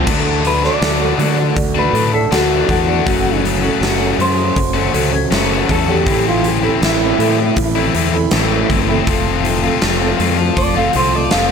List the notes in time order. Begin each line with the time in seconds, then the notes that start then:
0.06 D2 D3 F#3 A3 D4 F#4, kick, crash
0.44 D3 A3 F#4 B4, open hi-hat
0.61 A3 D4 F#4, snare
0.65 D5
0.81 D2 D3 F#3 A3 D4 F#4, snare, open hi-hat
1.00 A3 D4 F#4
1.17 D3 F#3 A3 D4 F#4, open hi-hat
1.38 muted distorted electric guitar stroke
1.57 D2, kick, open hi-hat
1.75 A3 D4 F#4
1.79 B4
1.93 A2 D3 F#3 A3 D4 F#4, open hi-hat
2.12 A3 D4 F#4 A4, muted distorted electric guitar stroke
2.31 D2 D3 F#3 A3 D4 F#4, snare, open hi-hat
2.51 A3 D4 F#4
2.67 E2 D3 A3 D4 F#4, kick, open hi-hat
2.86 A3 D4 F#4
3.04 F#1 F#2 C#3 F#3 A3 C#4 F#4, kick, open hi-hat
3.43 F#3 A3 C#4 F#4, open hi-hat
3.62 F#3 A3 C#4 F#4
3.80 F#1 F#2 C#3 F#3 A3 C#4 F#4, snare, open hi-hat
3.98 F#3 A3 C#4 F#4
4.17 F#2 F#3 A3 C#4 F#4, open hi-hat
4.21 C5
4.38 muted distorted electric guitar stroke
4.56 F#1, kick, open hi-hat
4.73 F#3 A3 C#4 F#4
4.92 C#2 F#3 A3 C#4 F#4, open hi-hat
5.10 F#3 A3 C#4 F#4, muted distorted electric guitar stroke
5.30 F#1 F#2 C#3 F#3 A3 C#4 F#4, snare, open hi-hat
5.50 F#3 A3 C#4 F#4
5.68 E2 F#3 A3 C#4 F#4 A4, kick, open hi-hat
5.87 F#3 A3 C#4 F#4 G4
6.05 A1 A2 E3 A3 C4 E4, kick, open hi-hat
6.29 F4
6.43 E3 A3 C4 E4, open hi-hat
6.48 G4
6.61 A3 C4 E4
6.80 A1 A2 E3 A3 C4 E4, snare, open hi-hat
6.85 E4
6.99 A3 C4 E4
7.17 A2 E3 A3 C4 E4, open hi-hat
7.38 muted distorted electric guitar stroke
7.56 A1, kick, open hi-hat
7.74 A3 C4 E4
7.93 E2 E3 A3 C4 E4, open hi-hat
8.12 A3 C4 E4
8.16 muted distorted electric guitar stroke
8.31 A1 A2 E3 A3 C4 E4, snare, open hi-hat
8.51 A3 C4 E4
8.69 F#1 E3 A3 C4 E4, kick, open hi-hat
8.87 A3 C4 E4
9.07 F1 F3 A3 C4 F4, kick, open hi-hat
9.44 F3 A3 C4 F4, open hi-hat
9.63 A3 C4 F4
9.82 F1 F3 A3 C4 F4, snare, open hi-hat
10.00 A3 C4 F4
10.19 F2 F3 A3 C4 F4, open hi-hat
10.39 muted distorted electric guitar stroke
10.57 F1 D5, kick, open hi-hat
10.74 A3 C4 F4 F5
10.93 C2 F3 A3 C4 F4 C5, open hi-hat
11.12 A3 C4 F4 D5, muted distorted electric guitar stroke
11.30 F1 F3 A3 C4 F4 F5, snare, open hi-hat